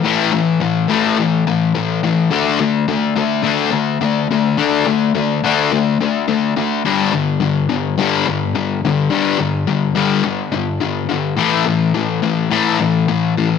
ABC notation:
X:1
M:4/4
L:1/8
Q:1/4=106
K:Glyd
V:1 name="Distorted electric guitar" clef=bass
[A,,E,A,] [A,,E,] [A,,E,] [A,,E,A,] [A,,E,] [A,,E,] [A,,E,] [A,,E,] | [D,A,D] [D,A,] [D,A,] [D,A,] [D,A,D] [D,A,] [D,A,] [D,A,] | [D,A,D] [D,A,] [D,A,] [D,A,D] [D,A,] [D,A,] [D,A,] [D,A,] | [G,,D,G,] [G,,D,] [G,,D,] [G,,D,] [G,,D,G,] [G,,D,] [G,,D,] [G,,D,] |
[G,,D,G,] [G,,D,] [G,,D,] [G,,D,G,] [G,,D,] [G,,D,] [G,,D,] [G,,D,] | [A,,E,A,] [A,,E,] [A,,E,] [A,,E,] [A,,E,A,] [A,,E,] [A,,E,] [A,,E,] |]